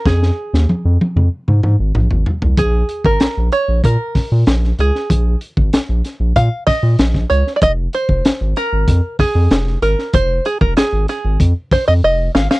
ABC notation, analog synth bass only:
X:1
M:4/4
L:1/16
Q:1/4=95
K:Bbm
V:1 name="Analog synth bass" clef=bass
F,,2 z E,, F,, F,, z F,, z A,, A,, A,,, B,,, A,,, z C,, | B,,,2 z A,,, B,,, B,,, z B,,, B,, z B,, B,, B,,,2 D,, z | B,,,2 z A,,, B,,, B,,, z B,,, B,, z B,, B,, B,,,2 D,, z | F,,,2 z F,,, A,,, A,,, z A,,, F,, z F,, F,, F,,,2 A,,, z |
F,,,2 z F,,, A,,, A,,, z A,,, F,, z F,, F,, F,,,2 A,,, z |]